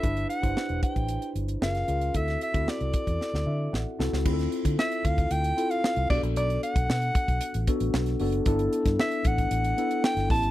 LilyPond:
<<
  \new Staff \with { instrumentName = "Soprano saxophone" } { \time 4/4 \key g \major \tempo 4 = 114 e''8 fis''4 g''4 r8 eis''4 | e''8 e''8 d''2~ d''8 r8 | r4 e''8 f''8 g''8. f''8. d''8 | d''8 fis''2 r4. |
r4 e''8 fis''4. g''8 a''8 | }
  \new Staff \with { instrumentName = "Tine electric piano" } { \time 4/4 \key g \major << { r1 | r2 r8 e''8 fis''8 a''8 | r1 | r1 |
r1 | } \\ { <d' e' g' b'>8 r16 <d' e' g' c''>4. r8. <cis' eis' gis' ais'>8 <cis' eis' gis' ais'>16 r16 | <c' e' fis' a'>8 r16 <c' e' fis' a'>4. r4 r16 <c' e' fis' a'>16 r16 | <c' e' f' aes' a'>4. r4 <c' e' f' a'>8. r16 <b d' fis' g' a'>8~ | <b d' fis' g' a'>4 r4. <b d' fis' a'>8. r16 <b d' fis' a'>16 r16 |
<b d' e' a'>4. r4 <b d' e' a'>8. r16 <b cis' e' g'>8 | } >> }
  \new Staff \with { instrumentName = "Fingered electric bass" } { \clef bass \time 4/4 \key g \major g,,8 r16 g,,16 r16 e,,16 r16 a,,8 r16 g,,8 fis,,8 cis,8 | d,8 r16 d,16 r16 c,16 r16 e,16 r16 d,16 d8 a,,16 r16 c,16 cis,16 | d,8 r16 d16 r8 d,8 d,8 r8. c,16 b,,16 bes,,16 | b,,8 r16 b,,16 b,8 r16 b,,16 r16 a,,16 r16 a,,16 b,,8 fis,,8 |
g,,8 r16 g,16 r8 a,,8 a,,8 r8. g,,16 a,,16 aes,,16 | }
  \new DrumStaff \with { instrumentName = "Drums" } \drummode { \time 4/4 <hh bd>16 hh16 hh16 <hh bd>16 sn16 hh16 <hh bd>16 <hh bd>16 hh16 hh16 hh16 hh16 sn16 <hh sn>16 hh16 hh16 | <hh bd>16 <hh sn>16 hh16 <hh bd>16 sn16 hh16 <hh bd>16 <hh bd>16 sn16 sn8. sn8 sn16 sn16 | <cymc bd>16 <hh sn>16 hh16 <hh bd>16 sn16 hh16 <hh bd>16 <hh bd>16 hh16 hh16 hh16 hh16 sn16 hh16 <cymc bd>16 hh16 | hh16 hh16 hh16 <hh bd>16 sn16 hh16 <hh bd>16 <hh bd>16 hh16 hh16 <hh bd>16 hh16 sn16 <hh sn>16 hho16 hh16 |
<hh bd>16 hh16 hh16 <hh bd sn>16 sn16 hh16 <hh bd>16 <hh bd>16 hh16 hh16 hh16 hh16 sn16 <hh sn>16 <hho bd>16 hh16 | }
>>